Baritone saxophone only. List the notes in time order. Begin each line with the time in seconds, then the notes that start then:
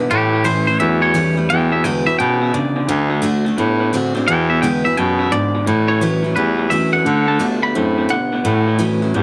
0.10 A2
0.80 E2
1.37 E2
1.50 E2
2.06 E2
2.18 B2
2.75 B2
2.88 D2
3.46 D2
3.58 A2
4.15 A2
4.27 E2
4.84 E2
4.96 B2
5.53 B2
5.66 A2
6.23 A2
6.36 E2
6.93 E2
7.05 D3
7.75 A2
8.32 A2
8.44 A2
9.02 A2
9.14 E2